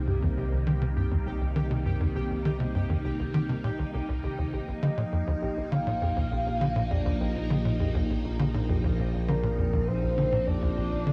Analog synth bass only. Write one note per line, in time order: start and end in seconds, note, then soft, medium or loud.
0.07 0.18 G2 medium
0.22 0.29 F2 loud
0.37 0.44 C2 medium
0.52 0.56 C2 medium
0.67 0.74 D#3 loud
0.82 0.89 C3 loud
0.96 1.07 G2 medium
1.11 1.18 F2 medium
1.26 1.33 C2 medium
1.41 1.45 C2 medium
1.56 1.63 D#3 loud
1.71 1.78 C3 loud
1.86 1.96 G2 medium
2.00 2.08 F2 loud
2.15 2.22 C2 medium
2.30 2.34 C2 medium
2.45 2.52 D#3 loud
2.60 2.67 C3 loud
2.75 2.85 G2 medium
2.89 2.97 F2 medium
3.04 3.12 C2 medium
3.19 3.24 C2 medium
3.34 3.41 D#3 medium
3.49 3.56 C3 medium
3.64 3.71 A#2 loud
3.79 3.83 C2 medium
3.94 4.01 C2 medium
4.08 4.19 C2 medium
4.23 4.28 C2 medium
4.38 4.45 D#2 medium
4.53 4.60 A#1 medium
4.68 4.72 A#1 medium
4.83 4.90 D3 loud
4.97 5.05 A#2 loud
5.12 5.23 F2 medium
5.27 5.34 D#2 medium
5.42 5.49 A#1 medium
5.57 5.61 A#1 medium
5.72 5.79 D3 medium
5.87 5.94 A#2 medium
6.02 6.12 F2 medium
6.16 6.24 D#2 loud
6.31 6.38 A#1 medium
6.46 6.50 A#1 medium
6.61 6.68 D3 loud
6.76 6.83 A#2 loud
6.91 7.01 F2 medium
7.06 7.13 D#2 loud
7.20 7.28 A#1 medium
7.35 7.39 A#1 medium
7.50 7.57 D3 medium
7.65 7.72 A#2 medium
7.80 7.90 F2 medium
7.95 8.02 D#2 loud
8.09 8.17 A#1 medium
8.24 8.29 A#1 medium
8.39 8.46 D3 loud
8.54 8.61 A#2 medium
8.69 8.80 F2 medium
8.84 8.91 D#2 loud
8.99 9.06 A#1 medium
9.14 9.18 A#1 medium
9.28 9.35 D3 loud
9.43 9.50 A#2 loud
9.58 9.69 F2 medium
9.73 9.80 D#2 loud
9.88 9.95 A#1 medium
10.03 10.07 A#1 medium
10.18 10.25 D3 loud
10.32 10.39 A#2 loud
10.47 10.58 F2 medium
10.62 10.69 D#2 medium
10.77 10.84 A#1 medium
10.92 10.96 A#1 medium
11.07 11.13 D3 loud